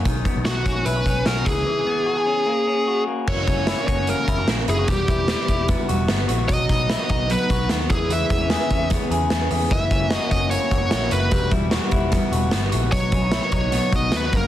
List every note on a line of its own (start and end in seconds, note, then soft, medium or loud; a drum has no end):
0.00 0.28 C#4 medium
0.05 0.22 B1 medium
0.05 1.46 D#3 medium
0.05 kick medium
0.05 closed hi-hat medium
0.25 1.50 B3 medium
0.25 kick medium
0.25 closed hi-hat medium
0.36 0.44 B1 medium
0.45 0.63 B1 medium
0.45 0.87 F#4 medium
0.45 0.85 F#4 medium
0.45 snare loud
0.45 closed hi-hat medium
0.66 0.82 A#1 medium
0.66 1.06 C#4 medium
0.66 kick medium
0.66 closed hi-hat medium
0.85 1.03 B1 medium
0.85 0.96 E4 medium
0.85 1.26 B4 medium
0.85 closed hi-hat medium
0.96 1.25 F#4 medium
1.06 1.22 B1 medium
1.06 1.90 C#4 medium
1.06 kick medium
1.06 closed hi-hat medium
1.26 1.43 B1 medium
1.26 1.51 F#4 medium
1.26 1.47 A#4 medium
1.26 snare medium
1.26 closed hi-hat medium
1.46 1.63 C#2 medium
1.46 1.65 E3 medium
1.46 3.03 G#4 medium
1.46 kick medium
1.46 closed hi-hat medium
1.66 2.51 E3 medium
1.87 2.46 B3 medium
2.06 2.17 F#4 medium
2.17 2.51 G#4 medium
2.27 2.67 C#4 soft
2.46 3.06 A#3 medium
2.67 3.32 C#4 medium
2.88 3.68 F#4 medium
3.07 3.32 A#3 soft
3.27 3.44 F#1 medium
3.27 3.47 E3 medium
3.27 4.88 E3 medium
3.27 3.47 A#3 medium
3.27 3.48 C#4 medium
3.27 3.48 F#4 medium
3.27 3.86 C#5 loud
3.27 kick medium
3.27 crash medium
3.47 3.72 F#1 medium
3.47 3.78 E3 medium
3.47 3.78 A#3 medium
3.47 3.88 C#4 medium
3.47 3.78 C#4 medium
3.47 3.77 F#4 medium
3.47 kick medium
3.47 closed hi-hat medium
3.67 3.78 E4 medium
3.67 snare loud
3.67 closed hi-hat medium
3.78 4.06 E3 soft
3.78 4.07 A#3 medium
3.78 4.08 C#4 soft
3.78 4.08 F#4 medium
3.78 4.28 F#4 medium
3.87 4.12 F#1 medium
3.87 4.93 C#4 medium
3.87 4.08 C#5 medium
3.87 kick medium
3.87 closed hi-hat medium
4.07 4.28 E3 medium
4.07 4.28 A#3 medium
4.07 4.46 A#3 medium
4.07 4.29 C#4 medium
4.07 4.29 F#4 medium
4.07 4.46 A#4 medium
4.07 closed hi-hat medium
4.28 4.44 F#1 medium
4.28 4.59 E3 medium
4.28 4.58 A#3 medium
4.28 4.58 C#4 medium
4.28 4.39 E4 medium
4.28 4.57 F#4 medium
4.28 kick medium
4.28 closed hi-hat medium
4.39 4.68 F#4 medium
4.47 4.64 A#1 medium
4.47 4.92 A#3 medium
4.47 snare loud
4.47 closed hi-hat medium
4.58 4.87 E3 soft
4.58 4.89 A#3 soft
4.58 4.89 C#4 soft
4.58 4.88 F#4 medium
4.68 4.85 F#1 medium
4.68 4.78 E4 medium
4.68 4.89 G#4 medium
4.68 closed hi-hat medium
4.78 4.92 F#4 medium
4.88 5.05 E1 medium
4.88 5.07 E3 medium
4.88 6.48 G3 medium
4.88 5.08 G3 medium
4.88 5.08 B3 medium
4.88 5.09 F#4 medium
4.88 5.65 G4 medium
4.88 kick loud
4.88 closed hi-hat medium
5.08 5.33 E1 medium
5.08 5.39 E3 medium
5.08 5.39 G3 medium
5.08 5.38 B3 medium
5.08 5.47 E4 medium
5.08 kick medium
5.08 closed hi-hat medium
5.28 snare loud
5.28 closed hi-hat medium
5.40 5.68 G3 medium
5.40 5.69 B3 medium
5.48 5.73 E1 medium
5.48 6.53 E4 medium
5.48 kick medium
5.48 closed hi-hat medium
5.68 5.87 E3 medium
5.68 5.88 G3 medium
5.68 6.08 B3 medium
5.68 5.89 B3 medium
5.68 5.90 F#4 medium
5.68 kick loud
5.68 closed hi-hat medium
5.89 6.06 E1 medium
5.89 6.19 E3 medium
5.89 6.19 G3 medium
5.89 6.19 B3 medium
5.89 6.27 F#4 medium
5.89 6.17 F#4 medium
5.89 closed hi-hat medium
6.08 6.26 G1 medium
6.08 7.30 B3 medium
6.08 snare loud
6.08 closed hi-hat medium
6.19 6.49 G3 soft
6.19 6.49 B3 medium
6.19 6.49 F#4 medium
6.28 6.46 A#1 medium
6.28 6.53 F#4 medium
6.28 closed hi-hat medium
6.48 6.66 B1 loud
6.48 6.67 D#3 soft
6.48 7.90 F#3 medium
6.48 6.69 F#3 medium
6.48 6.69 B3 medium
6.48 6.69 F#4 medium
6.48 7.09 D#5 medium
6.48 kick medium
6.48 closed hi-hat loud
6.69 6.94 B1 medium
6.69 6.99 D#3 medium
6.69 7.00 F#3 medium
6.69 7.00 B3 medium
6.69 7.09 D#4 medium
6.69 6.98 F#4 medium
6.69 kick medium
6.69 closed hi-hat medium
6.89 7.00 E4 medium
6.89 snare loud
6.89 closed hi-hat medium
7.00 7.29 F#3 soft
7.00 7.30 B3 medium
7.00 7.30 F#4 soft
7.00 7.49 F#4 medium
7.09 7.34 B1 medium
7.09 7.94 D#4 medium
7.09 7.31 D#5 medium
7.09 kick medium
7.09 closed hi-hat medium
7.29 7.48 D#3 medium
7.29 7.49 F#3 medium
7.29 7.71 B3 medium
7.29 7.49 B3 medium
7.29 7.50 F#4 medium
7.29 7.68 B4 medium
7.29 closed hi-hat medium
7.49 7.66 B1 medium
7.49 7.80 D#3 medium
7.49 7.80 F#3 medium
7.49 7.79 B3 medium
7.49 7.94 F#4 medium
7.49 7.78 F#4 medium
7.49 kick medium
7.49 closed hi-hat medium
7.69 7.87 D#2 medium
7.69 7.95 B3 medium
7.69 snare loud
7.69 closed hi-hat medium
7.80 7.89 F#3 soft
7.80 7.89 B3 medium
7.80 7.90 F#4 soft
7.89 8.23 E2 medium
7.89 9.71 E3 medium
7.89 8.10 E3 medium
7.89 8.28 G#3 medium
7.89 8.30 C#4 medium
7.89 8.30 G#4 medium
7.89 8.11 G#4 medium
7.89 8.30 B4 medium
7.89 kick loud
7.89 closed hi-hat medium
8.10 9.70 E3 medium
8.10 8.88 E5 medium
8.10 closed hi-hat medium
8.29 8.55 E2 loud
8.29 8.60 G#3 medium
8.29 8.41 B3 medium
8.29 8.60 C#4 medium
8.29 8.59 G#4 medium
8.29 8.58 B4 medium
8.29 kick medium
8.29 closed hi-hat medium
8.41 8.69 C#4 soft
8.50 9.10 G#4 medium
8.50 snare loud
8.50 closed hi-hat medium
8.60 8.90 C#4 medium
8.60 8.91 G#4 medium
8.60 8.90 B4 medium
8.70 8.95 E2 medium
8.70 9.75 C#4 medium
8.70 kick medium
8.70 closed hi-hat medium
8.90 9.09 G#3 medium
8.90 9.29 B3 medium
8.90 9.10 C#4 medium
8.90 9.11 G#4 medium
8.90 9.11 B4 medium
8.90 kick medium
8.90 snare soft
8.90 closed hi-hat medium
9.10 9.27 E2 medium
9.10 9.41 G#3 medium
9.10 9.41 C#4 medium
9.10 9.50 G#4 medium
9.10 9.40 G#4 medium
9.10 9.39 B4 medium
9.10 closed hi-hat medium
9.30 9.75 B3 medium
9.30 snare loud
9.30 closed hi-hat medium
9.40 9.71 C#4 soft
9.40 9.71 G#4 medium
9.40 9.71 B4 medium
9.51 9.67 E2 medium
9.51 9.75 G#4 medium
9.51 open hi-hat medium
9.71 9.87 F#1 medium
9.71 9.90 E3 medium
9.71 11.31 E3 medium
9.71 9.91 A#3 medium
9.71 9.92 E4 medium
9.71 9.92 F#4 medium
9.71 10.12 E5 medium
9.71 kick loud
9.71 closed hi-hat medium
9.91 10.16 F#1 loud
9.91 10.22 E3 medium
9.91 10.21 A#3 medium
9.91 10.30 C#4 medium
9.91 10.20 E4 medium
9.91 10.20 F#4 medium
9.91 kick medium
9.91 closed hi-hat medium
10.10 10.71 F#4 medium
10.10 10.28 D#5 medium
10.10 snare loud
10.10 closed hi-hat medium
10.21 10.50 E3 soft
10.21 10.51 A#3 soft
10.21 10.52 E4 medium
10.21 10.51 F#4 medium
10.31 10.56 F#1 medium
10.31 11.36 C#4 medium
10.31 10.50 D#5 medium
10.31 kick medium
10.31 closed hi-hat medium
10.50 10.70 E3 medium
10.50 10.90 A#3 medium
10.50 10.70 A#3 medium
10.50 10.71 E4 medium
10.50 10.72 F#4 medium
10.50 11.13 C#5 medium
10.50 closed hi-hat medium
10.71 10.88 F#1 medium
10.71 11.02 E3 medium
10.71 11.02 A#3 medium
10.71 11.01 E4 medium
10.71 11.11 F#4 medium
10.71 11.00 F#4 medium
10.71 kick medium
10.71 closed hi-hat medium
10.91 11.08 A#1 medium
10.91 11.36 A#3 medium
10.91 snare loud
10.91 closed hi-hat medium
11.02 11.30 E3 soft
11.02 11.32 A#3 soft
11.02 11.32 E4 soft
11.02 11.32 F#4 medium
11.11 11.28 F#1 medium
11.11 11.54 F#4 medium
11.11 11.49 B4 medium
11.11 closed hi-hat medium
11.31 11.48 E1 loud
11.31 11.50 E3 medium
11.31 12.91 G3 medium
11.31 11.51 G3 medium
11.31 11.51 B3 medium
11.31 11.52 F#4 medium
11.31 kick loud
11.31 closed hi-hat medium
11.51 11.77 E1 loud
11.51 11.82 E3 medium
11.51 11.82 G3 medium
11.51 11.82 B3 medium
11.51 11.90 E4 medium
11.51 11.80 F#4 medium
11.51 kick medium
11.51 closed hi-hat medium
11.71 12.31 F#4 medium
11.71 snare loud
11.71 closed hi-hat medium
11.82 12.12 G3 medium
11.82 12.12 B3 medium
11.82 12.12 F#4 medium
11.91 12.17 E1 medium
11.91 12.96 E4 medium
11.91 kick medium
11.91 closed hi-hat medium
12.12 12.31 E3 medium
12.12 12.32 G3 medium
12.12 12.51 B3 medium
12.12 12.32 B3 medium
12.12 12.32 F#4 medium
12.12 kick medium
12.12 snare soft
12.12 closed hi-hat medium
12.32 12.49 E1 medium
12.32 12.62 E3 medium
12.32 12.63 G3 medium
12.32 12.63 B3 medium
12.32 12.71 F#4 medium
12.32 12.61 F#4 medium
12.32 closed hi-hat medium
12.51 12.69 G1 medium
12.51 12.96 B3 medium
12.51 snare loud
12.51 closed hi-hat medium
12.63 12.92 G3 soft
12.63 12.92 B3 medium
12.63 12.93 F#4 medium
12.72 12.89 A#1 medium
12.72 13.32 F#4 medium
12.72 closed hi-hat medium
12.91 13.09 B1 loud
12.91 13.11 B2 medium
12.91 14.47 F#3 medium
12.91 13.11 F#3 medium
12.91 13.11 B3 medium
12.91 13.12 D#4 medium
12.91 13.52 C#5 medium
12.91 kick medium
12.91 closed hi-hat loud
13.12 13.37 B1 loud
13.12 13.42 B2 medium
13.12 13.43 F#3 medium
13.12 13.42 B3 medium
13.12 13.22 C#4 medium
13.12 13.41 D#4 medium
13.12 kick medium
13.12 closed hi-hat medium
13.22 13.51 D#4 medium
13.32 13.42 E4 medium
13.32 snare loud
13.32 closed hi-hat medium
13.42 13.72 F#3 soft
13.42 13.73 B3 medium
13.42 13.73 D#4 medium
13.42 13.91 F#4 medium
13.52 13.77 B1 loud
13.52 14.37 D#4 medium
13.52 13.90 C#5 medium
13.52 kick medium
13.52 closed hi-hat medium
13.72 13.91 B2 medium
13.72 13.92 F#3 medium
13.72 14.11 B3 medium
13.72 13.93 B3 medium
13.72 13.93 D#4 medium
13.72 snare soft
13.72 closed hi-hat medium
13.92 14.09 B1 loud
13.92 14.23 B2 medium
13.92 14.24 F#3 medium
13.92 14.23 B3 medium
13.92 14.21 D#4 medium
13.92 14.47 F#4 medium
13.92 14.15 D#5 medium
13.92 kick medium
13.92 closed hi-hat medium
14.12 14.30 D#2 medium
14.12 14.32 B3 medium
14.12 snare loud
14.12 closed hi-hat medium
14.17 14.36 B4 medium
14.23 14.33 F#3 soft
14.23 14.34 B3 medium
14.23 14.33 D#4 soft
14.32 14.47 F#1 medium
14.32 14.47 F#2 medium
14.32 14.47 C#3 medium
14.32 14.47 F#3 medium
14.32 14.47 A#3 medium
14.32 14.47 C#4 medium
14.32 kick loud
14.32 closed hi-hat medium
14.37 14.47 A#4 medium